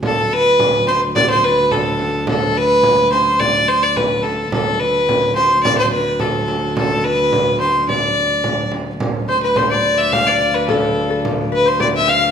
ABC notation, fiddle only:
X:1
M:2/4
L:1/16
Q:1/4=107
K:Ddor
V:1 name="Fiddle"
A2 B4 c2 | d c B2 A4 | A2 B4 c2 | d2 c d B2 A2 |
A2 B4 c2 | d c B2 A4 | A2 B4 c2 | d6 z2 |
z2 c B c d2 e | f d2 B A4 | z2 B c d e f2 |]